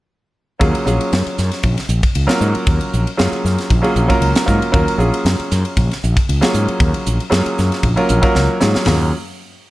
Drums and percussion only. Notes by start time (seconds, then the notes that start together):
0.61 kick, ride
0.75 ride
0.87 hi-hat pedal
1.01 ride
1.13 snare, ride
1.27 ride
1.38 snare, hi-hat pedal
1.51 snare, ride
1.63 kick, ride
1.78 snare, ride
1.89 hi-hat pedal
2.03 kick, ride
2.15 ride
2.29 snare, ride
2.41 hi-hat pedal
2.55 ride
2.67 kick, ride
2.81 ride
2.93 hi-hat pedal
3.07 ride
3.19 snare, ride
3.33 ride
3.45 snare, hi-hat pedal
3.58 snare, ride
3.70 kick, ride
3.84 ride
3.96 hi-hat pedal
4.10 kick, ride
4.22 ride
4.35 snare, ride
4.48 kick, hi-hat pedal
4.62 ride
4.74 kick, ride
4.88 ride
5.00 hi-hat pedal
5.14 ride
5.26 snare, ride
5.39 ride
5.51 snare, hi-hat pedal
5.65 ride
5.77 kick, ride
5.91 snare, ride
6.03 hi-hat pedal
6.17 kick, ride
6.29 ride
6.42 snare, ride
6.54 hi-hat pedal
6.68 ride
6.80 kick, ride
6.94 ride
7.06 hi-hat pedal
7.20 ride
7.32 snare, ride
7.46 ride
7.58 snare, hi-hat pedal
7.72 snare, ride
7.83 kick, ride
7.97 ride
8.09 hi-hat pedal
8.23 kick, ride
8.35 snare
8.61 snare, hi-hat pedal
8.75 snare
8.86 snare, floor tom, open hi-hat